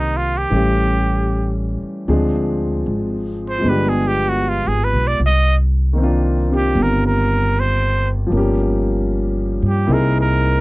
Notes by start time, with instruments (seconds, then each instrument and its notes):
Already playing: upright bass C2, grand piano D#3 A#3 C4 D4 G4
0.00 muted trumpet D#4
0.17 muted trumpet F4
0.38 muted trumpet G4
0.50 upright bass A1, grand piano E3 G3 A3 C#4
0.55 grand piano G4
1.82 muted upright bass stroke
2.08 upright bass D2, grand piano F3 G#3 C4 D4 G#4
2.86 upright bass G#1
3.50 muted trumpet C5
3.58 grand piano F3 G#3
3.64 upright bass G1, grand piano B3 D4
3.69 grand piano G4, muted trumpet B4
3.89 muted trumpet G#4
4.07 muted trumpet G4
4.29 muted trumpet F#4
4.49 muted trumpet F4
4.67 upright bass G#1, muted trumpet G#4
4.84 muted trumpet B4
4.94 upright bass B1
5.07 muted trumpet D5
5.20 upright bass C2
5.26 muted trumpet D#5
5.93 grand piano D#3 A#3
5.98 grand piano C4 D4
6.04 grand piano F4
6.50 grand piano C4 D4 G4
6.56 muted trumpet G4
6.75 upright bass G1
6.83 muted trumpet A#4
7.07 muted trumpet A#4
7.60 muted trumpet C5
8.27 grand piano F3 G3
8.32 upright bass G1, grand piano A#3 C#4
8.37 grand piano G4
9.62 upright bass G2
9.68 muted trumpet G4
9.87 upright bass C2, grand piano A#3 C4 D#4 E4
9.92 grand piano G#4, muted trumpet A#4
10.21 muted trumpet A#4